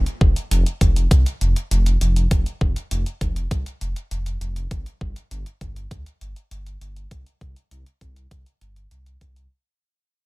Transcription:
0.06 closed hi-hat
0.21 detuned saw bass F1, kick
0.36 closed hi-hat
0.51 detuned saw bass F1, closed hi-hat
0.66 closed hi-hat
0.81 detuned saw bass F1, kick, closed hi-hat
0.96 closed hi-hat
1.11 detuned saw bass C2, kick, closed hi-hat
1.26 closed hi-hat
1.41 detuned saw bass F1, closed hi-hat
1.56 closed hi-hat
1.71 detuned saw bass F1, closed hi-hat
1.86 closed hi-hat
2.01 detuned saw bass F1, closed hi-hat
2.16 closed hi-hat
2.31 detuned saw bass F1, kick, closed hi-hat
2.46 closed hi-hat
2.61 detuned saw bass F1, kick
2.76 closed hi-hat
2.91 detuned saw bass F1, closed hi-hat
3.06 closed hi-hat
3.21 detuned saw bass F1, kick, closed hi-hat
3.36 closed hi-hat
3.51 detuned saw bass C2, kick, closed hi-hat
3.66 closed hi-hat
3.81 detuned saw bass F1, closed hi-hat
3.96 closed hi-hat
4.11 detuned saw bass F1, closed hi-hat
4.26 closed hi-hat
4.41 detuned saw bass F1, closed hi-hat
4.56 closed hi-hat
4.71 detuned saw bass G1, kick, closed hi-hat
4.86 closed hi-hat
5.01 detuned saw bass G1, kick
5.16 closed hi-hat
5.31 detuned saw bass G1, closed hi-hat
5.46 closed hi-hat
5.61 detuned saw bass G1, kick, closed hi-hat
5.76 closed hi-hat
5.91 detuned saw bass D2, kick, closed hi-hat
6.06 closed hi-hat
6.21 detuned saw bass G1, closed hi-hat
6.36 closed hi-hat
6.51 detuned saw bass G1, closed hi-hat
6.66 closed hi-hat
6.81 detuned saw bass G1, closed hi-hat
6.96 closed hi-hat
7.11 detuned saw bass C2, kick, closed hi-hat
7.26 closed hi-hat
7.41 detuned saw bass C2, kick, closed hi-hat
7.56 closed hi-hat
7.71 detuned saw bass C2, closed hi-hat
7.86 closed hi-hat
8.01 detuned saw bass C2, kick, closed hi-hat
8.16 closed hi-hat
8.31 detuned saw bass C2, kick, closed hi-hat
8.46 closed hi-hat
8.61 detuned saw bass G1, closed hi-hat
8.76 closed hi-hat
8.91 detuned saw bass C2, closed hi-hat
9.06 closed hi-hat
9.21 detuned saw bass C2, kick, closed hi-hat
9.36 closed hi-hat

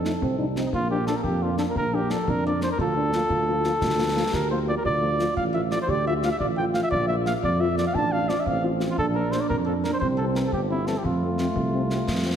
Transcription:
Already playing: tuba F2, cornet A4
0.04 french horn section F3 C4 D#4, euphonium A3, snare
0.21 tuba C2, euphonium C4, concert bass drum
0.38 french horn section F3 C4 D#4, euphonium D4
0.55 french horn section F3 C4 D#4, euphonium C4, snare
0.65 cornet D#4
0.73 tuba A#1, euphonium A#3, cornet F4, concert bass drum
0.90 french horn section F3 A#3 D4, cornet G4
1.07 french horn section F3 A#3 D4, cornet A4, snare
1.16 cornet A#4
1.23 tuba F2, cornet G4, concert bass drum
1.41 french horn section F3 A#3 D4, cornet F4
1.57 french horn section F3 A#3 D4, cornet A4, snare
1.70 cornet A#4
1.76 tuba A#1, cornet A#4, concert bass drum
1.92 french horn section F3 A#3 D4, cornet G4
2.10 french horn section F3 A#3 D4, cornet A4, snare
2.27 tuba F2, euphonium D4, cornet A#4, concert bass drum
2.45 french horn section F3 A#3 D4, cornet D5
2.61 french horn section F3 A#3 D4, cornet C5, snare
2.72 cornet A#4
2.78 tuba D2, euphonium F4, cornet A4, concert bass drum
2.96 french horn section F3 A#3 F4, euphonium D4
3.13 french horn section F3 A#3 F4, euphonium F4, snare
3.30 tuba D2, concert bass drum
3.48 french horn section F3 A#3 F4
3.64 french horn section F3 A#3 F4, snare
3.81 tuba D2, concert bass drum, snare
3.99 french horn section F3 A#3 F4
4.16 french horn section F3 A#3 F4
4.33 tuba D2, euphonium G4, cornet A#4, concert bass drum, snare
4.50 french horn section F3 A#3 F4, cornet C5
4.67 french horn section F3 A#3 F4, cornet D5
4.77 cornet A#4
4.84 tuba D2, euphonium F4, cornet D5, concert bass drum
5.01 french horn section F3 A3 F4
5.18 french horn section F3 A3 F4, snare
5.37 tuba A1, cornet F5, concert bass drum
5.53 french horn section F3 A3 F4, cornet E5
5.71 french horn section F3 A3 F4, cornet D5, snare
5.82 cornet C5
5.88 tuba D2, euphonium G4, cornet D5, concert bass drum
6.06 french horn section F3 A3 F4, cornet E5
6.23 french horn section F3 A3 F4, cornet F5, snare
6.31 cornet E5
6.39 tuba A1, euphonium F4, cornet D5, concert bass drum
6.57 french horn section F3 A3 F4, cornet G5
6.74 french horn section F3 A3 F4, cornet F5, snare
6.83 cornet E5
6.91 tuba A#1, cornet D5, concert bass drum
7.08 french horn section F3 A#3 F4, cornet E5
7.26 french horn section F3 A#3 F4, cornet F5, snare
7.43 tuba F2, cornet D5, concert bass drum
7.60 french horn section F3 A#3 F4, cornet E5
7.77 french horn section F3 A#3 F4, cornet D5, snare
7.87 cornet F5
7.94 tuba A1, euphonium D4, cornet A5, concert bass drum
8.12 french horn section F3 C4 F4, cornet F5
8.29 french horn section F3 C4 F4, cornet D5, snare
8.40 cornet E5
8.46 tuba A1, euphonium C4, cornet F5, concert bass drum
8.63 french horn section F3 C4 F4
8.80 french horn section F3 C4 F4, snare
8.90 cornet F4
8.98 tuba A#1, euphonium D4, cornet A4, concert bass drum
9.15 french horn section F3 A#3 D4, cornet A#4
9.31 french horn section F3 A#3 D4, cornet C5, snare
9.41 cornet D5
9.49 tuba F2, cornet A#4, concert bass drum
9.65 french horn section F3 A#3 D4, cornet A4
9.84 french horn section F3 A#3 D4, cornet A#4, snare
9.93 cornet C5
10.00 tuba C2, euphonium C4, cornet C5, concert bass drum
10.17 french horn section E3 G3 C4, cornet A4
10.35 french horn section E3 G3 C4, cornet A#4, snare
10.47 cornet A4
10.52 tuba G1, cornet G4, concert bass drum
10.70 french horn section E3 G3 C4, cornet E4
10.87 french horn section E3 G3 C4, cornet A4, snare
10.98 cornet G4
11.04 tuba F2, euphonium A3, cornet F4, concert bass drum
11.22 french horn section F3 A3 C4
11.38 french horn section F3 A3 C4, snare
11.56 tuba C2, concert bass drum
11.74 french horn section F3 A3 C4
11.90 french horn section F3 A3 C4, snare
12.07 tuba F2, concert bass drum, snare
12.25 french horn section F3 A3 C4

